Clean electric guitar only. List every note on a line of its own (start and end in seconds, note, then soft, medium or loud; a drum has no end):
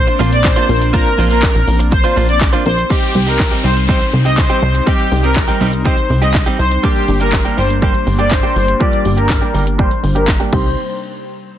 0.07 muted clean electric guitar stroke medium
0.19 0.34 A#3 loud
0.19 0.32 D4 loud
0.19 0.31 F4 medium
0.19 0.30 C5 loud
0.32 muted clean electric guitar stroke medium
0.44 muted clean electric guitar stroke soft
0.56 0.67 A#3 medium
0.56 0.68 D4 medium
0.56 0.68 F4 medium
0.56 0.69 C5 medium
0.81 muted clean electric guitar stroke medium
0.93 1.08 A#3 medium
0.93 1.08 D4 medium
0.93 1.08 F4 medium
0.93 1.09 C5 medium
1.18 1.29 A#3 medium
1.18 1.29 D4 medium
1.18 1.30 F4 medium
1.18 1.29 C5 medium
1.30 1.41 A#3 medium
1.30 1.42 D4 medium
1.30 1.42 F4 medium
1.30 1.41 C5 medium
1.42 muted clean electric guitar stroke soft
1.55 muted clean electric guitar stroke medium
1.79 muted clean electric guitar stroke medium
1.92 muted clean electric guitar stroke soft
2.04 2.15 A#3 soft
2.04 2.16 D4 medium
2.04 2.16 F4 medium
2.04 2.15 C5 medium
2.16 2.31 A#3 medium
2.16 2.29 D4 medium
2.16 2.28 F4 loud
2.16 2.27 C5 medium
2.28 muted clean electric guitar stroke soft
2.41 muted clean electric guitar stroke soft
2.53 2.64 A#3 medium
2.53 2.64 D4 medium
2.53 2.65 F4 medium
2.53 2.65 C5 medium
2.65 muted clean electric guitar stroke soft
2.77 muted clean electric guitar stroke medium
2.90 3.13 G3 medium
2.90 3.13 C4 medium
2.90 3.13 D#4 medium
2.90 3.14 G4 medium
3.15 muted clean electric guitar stroke soft
3.27 3.38 G3 medium
3.27 3.38 C4 medium
3.27 3.39 D#4 medium
3.27 3.38 G4 medium
3.39 muted clean electric guitar stroke soft
3.51 3.62 G3 medium
3.51 3.63 C4 medium
3.51 3.63 D#4 medium
3.51 3.63 G4 medium
3.64 3.78 G3 medium
3.64 3.76 C4 medium
3.64 3.76 D#4 loud
3.64 3.75 G4 loud
3.76 muted clean electric guitar stroke soft
3.88 4.03 G3 medium
3.88 4.01 C4 medium
3.88 4.00 D#4 medium
3.88 3.99 G4 loud
4.01 muted clean electric guitar stroke soft
4.13 muted clean electric guitar stroke soft
4.25 4.36 G3 soft
4.25 4.37 C4 medium
4.25 4.37 D#4 medium
4.25 4.36 G4 medium
4.38 muted clean electric guitar stroke soft
4.50 4.61 G3 medium
4.50 4.61 C4 medium
4.50 4.62 D#4 medium
4.50 4.62 G4 medium
4.62 muted clean electric guitar stroke soft
4.74 muted clean electric guitar stroke soft
4.86 5.09 G3 medium
4.86 5.10 C4 medium
4.86 5.10 D#4 medium
4.86 5.10 G4 loud
5.11 muted clean electric guitar stroke soft
5.23 5.34 G3 medium
5.23 5.35 C4 medium
5.23 5.35 D#4 medium
5.23 5.35 G4 medium
5.48 5.59 G3 medium
5.48 5.60 C4 medium
5.48 5.60 D#4 medium
5.48 5.59 G4 medium
5.60 5.75 G3 medium
5.60 5.73 C4 medium
5.60 5.72 D#4 medium
5.60 5.71 G4 medium
5.73 muted clean electric guitar stroke soft
5.85 5.99 G3 medium
5.85 5.97 C4 medium
5.85 5.97 D#4 loud
5.85 5.96 G4 medium
5.97 muted clean electric guitar stroke soft
6.09 muted clean electric guitar stroke soft
6.22 6.33 G3 medium
6.22 6.33 C4 medium
6.22 6.34 D#4 medium
6.22 6.33 G4 medium
6.34 muted clean electric guitar stroke soft
6.46 6.58 G3 medium
6.46 6.58 C4 medium
6.46 6.58 D#4 medium
6.46 6.59 G4 medium
6.71 muted clean electric guitar stroke soft
6.83 7.06 G3 medium
6.83 7.07 A#3 medium
6.83 7.07 D4 loud
6.83 7.07 G4 medium
7.08 muted clean electric guitar stroke soft
7.20 7.31 G3 medium
7.20 7.32 A#3 medium
7.20 7.32 D4 medium
7.20 7.32 G4 medium
7.33 muted clean electric guitar stroke soft
7.45 7.56 G3 medium
7.45 7.57 A#3 medium
7.45 7.57 D4 medium
7.45 7.56 G4 medium
7.57 7.72 G3 medium
7.57 7.70 A#3 medium
7.57 7.69 D4 medium
7.57 7.68 G4 loud
7.70 muted clean electric guitar stroke soft
7.82 7.96 G3 medium
7.82 7.94 A#3 medium
7.82 7.94 D4 medium
7.82 7.93 G4 medium
7.94 muted clean electric guitar stroke soft
8.06 muted clean electric guitar stroke soft
8.19 8.30 G3 medium
8.19 8.30 A#3 medium
8.19 8.30 D4 medium
8.19 8.30 G4 medium
8.31 muted clean electric guitar stroke soft
8.43 8.54 G3 medium
8.43 8.55 A#3 medium
8.43 8.55 D4 medium
8.43 8.56 G4 medium
8.55 muted clean electric guitar stroke soft
8.68 muted clean electric guitar stroke soft
8.80 9.03 G3 medium
8.80 9.03 A#3 medium
8.80 9.04 D4 medium
8.80 9.04 G4 medium
9.17 9.28 G3 medium
9.17 9.29 A#3 medium
9.17 9.29 D4 medium
9.17 9.28 G4 medium
9.29 muted clean electric guitar stroke soft
9.41 9.52 G3 medium
9.41 9.53 A#3 medium
9.41 9.53 D4 medium
9.41 9.53 G4 medium
9.54 9.68 G3 medium
9.54 9.66 A#3 medium
9.54 9.66 D4 medium
9.54 9.65 G4 medium
9.66 muted clean electric guitar stroke medium
9.78 9.93 G3 medium
9.78 9.91 A#3 medium
9.78 9.90 D4 medium
9.78 9.90 G4 medium
9.91 muted clean electric guitar stroke soft
10.03 muted clean electric guitar stroke soft
10.15 10.26 G3 medium
10.15 10.27 A#3 medium
10.15 10.27 D4 medium
10.15 10.27 G4 medium
10.40 10.51 G3 medium
10.40 10.52 A#3 medium
10.40 10.53 D4 medium
10.40 10.52 G4 loud
10.52 10.67 G3 medium
10.52 10.68 C4 medium
10.52 10.68 D#4 loud
10.52 10.68 G4 medium